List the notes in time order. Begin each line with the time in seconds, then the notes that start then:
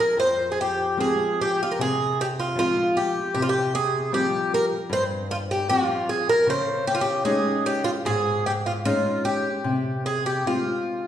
0.00 A#4
0.17 F2 C5
0.52 G#4
0.61 G4
0.97 F3 G#3 C4 G#4
1.41 G4
1.63 F4
1.71 A#4
1.79 C3 G#4
2.21 G4
2.40 F4
2.55 F3 G#3 C4 F4
2.97 G4
3.35 C3 G4
3.42 F4
3.49 G4
3.75 G#4
4.12 F3 G3 C4 G4
4.54 A#4
4.90 G2 C5
5.31 F4
5.51 G4
5.68 F3 G3 C4 F4
6.09 G#4
6.29 A#4
6.47 C#3 C5
6.87 G4
6.95 F4
7.01 G4
7.25 G#3 C#4 D#4 G#4
7.66 G4
7.84 F4
8.05 G#2 G#4
8.46 G4
8.66 F4
8.85 G#3 C#4 D#4 F4
9.25 G4
9.64 C3
10.06 G#4
10.26 G4
10.46 G#3 C4 F4